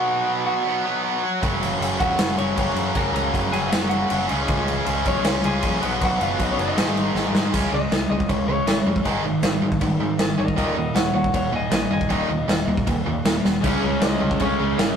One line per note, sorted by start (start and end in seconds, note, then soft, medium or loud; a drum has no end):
0.00 0.25 B2 medium
0.00 0.27 F#3 medium
0.00 0.26 B3 medium
0.00 0.26 D#4 medium
0.00 0.29 F#4 medium
0.00 0.43 F#4 medium
0.00 0.45 F#5 loud
0.26 0.83 B2 medium
0.26 0.85 F#3 medium
0.26 0.83 B3 medium
0.26 0.83 D#4 medium
0.26 0.83 F#4 loud
0.46 1.00 F#4 medium
0.46 1.00 F#5 medium
0.65 0.83 B2 medium
0.65 0.87 F#3 medium
0.69 0.84 B3 medium
0.83 1.22 B2 medium
0.83 1.41 F#3 medium
0.83 1.22 B3 medium
0.83 1.22 D#4 medium
0.83 1.42 F#4 medium
1.41 1.74 F#1 loud
1.41 2.00 F#2 medium
1.41 1.98 C#3 medium
1.41 2.00 F#3 medium
1.41 2.00 A#3 loud
1.41 1.99 C#4 medium
1.41 1.98 F#4 loud
1.41 kick loud
1.41 crash medium
1.63 crash medium
1.80 1.96 F#1 medium
1.80 crash medium
1.99 2.16 D#1 medium
1.99 2.55 F#2 medium
1.99 2.55 C#3 medium
1.99 2.56 F#3 medium
1.99 2.56 A#3 medium
1.99 2.58 C#4 medium
1.99 2.55 F#4 medium
1.99 2.35 F#4 medium
1.99 2.36 F#5 medium
1.99 kick medium
1.99 crash medium
2.19 2.35 F#1 medium
2.19 snare loud
2.19 crash medium
2.37 2.54 F#1 medium
2.37 2.57 C#3 medium
2.37 2.55 F#3 medium
2.37 2.91 C#5 medium
2.37 2.96 C#6 loud
2.37 crash medium
2.41 2.56 F#2 medium
2.56 2.73 F#1 medium
2.56 2.93 F#2 medium
2.56 2.94 C#3 medium
2.56 2.94 F#3 medium
2.56 2.94 A#3 medium
2.56 2.95 C#4 medium
2.56 2.95 F#4 loud
2.56 kick medium
2.56 crash medium
2.75 2.91 F#2 medium
2.75 crash medium
2.94 3.11 F#1 medium
2.94 3.51 F#2 loud
2.94 3.51 C#3 medium
2.94 3.51 F#3 loud
2.94 3.51 A#3 medium
2.94 3.51 C#4 loud
2.94 3.50 F#4 medium
2.94 3.13 A#4 medium
2.94 3.13 A#5 medium
2.94 kick medium
2.94 crash medium
3.12 3.29 C#2 medium
3.12 3.50 A#4 medium
3.12 3.50 A#5 loud
3.12 crash medium
3.34 3.50 F#1 medium
3.34 kick medium
3.34 crash medium
3.51 3.69 F#1 medium
3.51 4.07 F#2 medium
3.51 4.08 C#3 medium
3.51 4.08 F#3 medium
3.51 4.09 A#3 loud
3.51 4.08 C#4 medium
3.51 4.08 F#4 medium
3.51 3.70 G#4 medium
3.51 3.70 G#5 medium
3.51 crash medium
3.70 4.04 F#1 loud
3.70 3.89 F#4 medium
3.70 3.88 F#5 medium
3.70 snare loud
3.70 crash medium
3.89 4.08 F#2 medium
3.89 4.09 C#3 medium
3.89 4.08 F#3 medium
3.89 4.26 F#4 medium
3.89 4.25 F#5 medium
3.89 crash medium
4.09 4.27 F#1 medium
4.09 4.27 F#2 medium
4.09 4.27 C#3 medium
4.09 4.28 F#3 medium
4.09 4.28 A#3 medium
4.09 4.28 C#4 loud
4.09 4.28 F#4 medium
4.09 crash medium
4.13 4.30 F#3 medium
4.28 4.46 C#2 medium
4.28 4.84 C#3 medium
4.28 4.85 G#3 medium
4.28 4.85 C#4 loud
4.28 4.85 F4 medium
4.28 4.86 G#4 medium
4.28 crash medium
4.48 4.80 C#2 loud
4.48 kick loud
4.48 crash medium
4.68 crash medium
4.85 5.02 C#2 medium
4.85 5.42 C#3 medium
4.85 5.42 G#3 medium
4.85 5.42 C#4 medium
4.85 5.42 F4 medium
4.85 5.42 G#4 medium
4.85 crash medium
5.05 5.21 B1 medium
5.05 5.42 C#4 medium
5.05 5.42 C#5 loud
5.05 kick medium
5.05 crash medium
5.24 5.41 C#2 loud
5.24 5.42 C#3 medium
5.24 5.43 G#3 medium
5.24 5.42 C#4 loud
5.24 snare loud
5.24 crash medium
5.44 5.60 C#2 medium
5.44 5.80 C#3 medium
5.44 5.80 G#3 medium
5.44 5.81 C#4 medium
5.44 5.81 F4 medium
5.44 5.80 G#4 medium
5.44 5.98 G#4 loud
5.44 6.03 G#5 medium
5.44 crash medium
5.63 5.79 A#1 loud
5.63 kick medium
5.63 crash medium
5.80 5.98 B1 medium
5.80 6.37 B2 medium
5.80 6.37 F#3 medium
5.80 6.37 B3 medium
5.80 6.38 D#4 medium
5.80 6.38 F#4 medium
5.80 crash medium
6.01 6.17 B1 loud
6.01 6.20 F#4 medium
6.01 6.22 F#5 loud
6.01 kick loud
6.01 crash medium
6.20 6.36 F#1 medium
6.20 6.38 F4 medium
6.20 6.41 F5 loud
6.20 crash medium
6.38 6.55 B1 medium
6.38 6.75 B2 medium
6.38 6.76 F#3 medium
6.38 6.76 B3 loud
6.38 6.76 D#4 loud
6.38 6.76 F#4 medium
6.38 kick medium
6.38 crash medium
6.42 6.50 D#4 medium
6.42 6.50 D#5 medium
6.51 6.59 C#4 medium
6.51 6.60 C#5 medium
6.58 6.74 F#1 medium
6.58 7.31 D#4 medium
6.58 7.32 D#5 medium
6.58 crash medium
6.77 7.08 G#1 loud
6.77 7.33 G#2 medium
6.77 7.33 D#3 loud
6.77 7.33 G#3 medium
6.77 7.33 C4 loud
6.77 7.32 D#4 loud
6.77 snare loud
6.77 crash medium
6.97 crash medium
7.15 7.31 G#1 loud
7.15 snare medium
7.33 7.49 G#2 medium
7.33 7.53 G#2 medium
7.33 7.52 D#3 medium
7.33 7.52 G#3 medium
7.33 7.52 C4 medium
7.33 7.52 D#4 medium
7.33 snare loud
7.53 7.66 C#2 loud
7.53 7.71 C#3 medium
7.53 7.71 G#3 medium
7.53 7.72 C#4 loud
7.53 kick loud
7.53 crash medium
7.72 7.85 C#2 medium
7.72 7.90 C#3 medium
7.72 7.90 G#3 medium
7.72 8.09 D#5 medium
7.91 8.04 C#2 medium
7.91 8.09 C#3 medium
7.91 8.09 G#3 loud
7.91 snare medium
7.91 crash medium
8.10 8.23 C#2 medium
8.10 8.28 C#3 medium
8.10 8.28 G#3 medium
8.10 8.29 D#5 medium
8.20 kick medium
8.29 8.42 C#2 medium
8.29 8.47 C#3 medium
8.29 8.47 G#3 medium
8.29 8.47 C#5 medium
8.29 kick loud
8.29 crash medium
8.46 8.60 C#2 medium
8.46 8.66 C#3 medium
8.46 8.66 G#3 medium
8.46 9.04 C#5 loud
8.66 8.80 G#1 medium
8.66 8.85 C#3 medium
8.66 8.85 G#3 loud
8.66 snare loud
8.66 crash medium
8.86 9.00 F2 medium
8.86 9.04 C#3 medium
8.86 9.04 G#3 medium
8.96 kick medium
9.05 9.19 G#1 loud
9.05 9.23 G#2 medium
9.05 9.23 D#3 loud
9.05 9.24 G#3 loud
9.05 kick medium
9.05 crash medium
9.23 9.37 G#1 medium
9.23 9.42 G#2 medium
9.23 9.42 D#3 medium
9.43 9.56 G#1 medium
9.43 9.62 G#2 medium
9.43 9.62 D#3 loud
9.43 snare loud
9.43 crash medium
9.62 9.75 G#2 medium
9.62 9.80 G#2 medium
9.62 9.81 D#3 medium
9.72 kick loud
9.81 9.95 G#1 medium
9.81 10.00 G#2 medium
9.81 10.00 D#3 medium
9.81 kick loud
9.81 crash medium
10.00 10.13 G#2 medium
10.00 10.18 G#2 medium
10.00 10.18 D#3 medium
10.19 10.33 G#1 loud
10.19 10.37 G#2 medium
10.19 10.38 D#3 medium
10.19 snare loud
10.19 crash medium
10.38 10.52 G#1 medium
10.38 10.56 G#2 medium
10.38 10.56 D#3 medium
10.38 10.55 A#4 medium
10.38 10.57 D#5 medium
10.48 kick medium
10.57 10.71 D#1 medium
10.57 10.75 D#2 medium
10.57 10.76 A#2 medium
10.57 10.76 D#3 loud
10.57 10.75 A#4 medium
10.57 10.77 D#5 medium
10.57 kick medium
10.57 crash medium
10.75 10.89 D#1 medium
10.75 10.93 D#2 medium
10.75 10.93 A#2 medium
10.75 10.95 A#4 medium
10.75 10.95 D#5 medium
10.94 11.09 D#1 medium
10.94 11.12 D#2 medium
10.94 11.13 A#2 medium
10.94 11.13 C#5 medium
10.94 11.15 F#5 medium
10.94 snare loud
10.94 crash medium
11.13 11.27 D#1 medium
11.13 11.32 D#2 medium
11.13 11.32 A#2 medium
11.13 11.33 C#5 medium
11.13 11.34 F#5 loud
11.24 kick medium
11.34 11.47 D#1 medium
11.34 11.50 D#2 medium
11.34 11.50 A#2 medium
11.34 11.53 C#5 medium
11.34 11.53 F#5 medium
11.34 kick medium
11.34 crash medium
11.51 11.66 D#1 medium
11.51 11.70 D#2 medium
11.51 11.70 A#2 medium
11.51 11.72 D#5 medium
11.56 11.73 G#5 medium
11.71 11.85 A#1 medium
11.71 11.89 D#2 medium
11.71 11.89 A#2 medium
11.71 11.91 D#5 medium
11.71 11.92 G#5 medium
11.71 snare loud
11.71 crash medium
11.90 12.04 F#1 medium
11.90 12.08 D#2 medium
11.90 12.09 A#2 medium
11.90 12.10 D#5 medium
11.90 12.11 G#5 medium
12.01 kick medium
12.10 12.23 D#1 loud
12.10 12.28 D#2 medium
12.10 12.28 A#2 medium
12.10 12.29 D#3 loud
12.10 12.86 D#5 medium
12.10 kick medium
12.10 crash medium
12.29 12.42 D#1 medium
12.29 12.47 D#2 medium
12.29 12.47 A#2 medium
12.48 12.62 D#1 medium
12.48 12.66 D#2 medium
12.48 12.67 A#2 medium
12.48 snare loud
12.48 crash medium
12.67 12.81 D#2 medium
12.67 12.85 D#2 medium
12.67 12.85 A#2 medium
12.77 kick loud
12.87 13.01 D#1 loud
12.87 13.05 D#2 medium
12.87 13.05 A#2 medium
12.87 kick loud
12.87 crash medium
13.06 13.24 D#2 medium
13.06 13.19 D#2 medium
13.06 13.24 A#2 medium
13.25 13.38 D#1 medium
13.25 13.42 D#2 medium
13.25 13.43 A#2 medium
13.25 snare loud
13.25 crash medium
13.44 13.58 D#1 medium
13.44 13.62 D#2 medium
13.44 13.61 A#2 medium
13.44 snare medium
13.61 13.77 C#2 loud
13.61 13.80 C#3 medium
13.61 13.81 G#3 medium
13.61 13.81 C#4 medium
13.61 kick loud
13.61 crash medium
13.66 14.41 C#4 loud
13.81 13.96 C#2 medium
13.81 13.98 C#3 medium
13.81 13.98 G#3 medium
13.99 14.15 C#2 medium
13.99 14.18 C#3 medium
13.99 14.18 G#3 medium
13.99 14.39 D#5 loud
13.99 snare loud
13.99 crash medium
14.20 14.35 C#2 medium
14.20 14.38 C#3 medium
14.20 14.38 G#3 medium
14.31 kick loud
14.39 14.53 C#2 medium
14.39 14.57 C#3 medium
14.39 14.58 G#3 medium
14.39 14.78 C#5 medium
14.39 kick loud
14.39 crash medium
14.43 14.96 C#4 medium
14.59 14.73 C#2 medium
14.59 14.76 C#3 medium
14.59 14.77 G#3 medium
14.78 14.92 G#1 loud
14.78 14.96 C#3 medium
14.78 14.96 G#3 medium
14.78 14.96 A#4 medium
14.78 snare loud
14.78 crash medium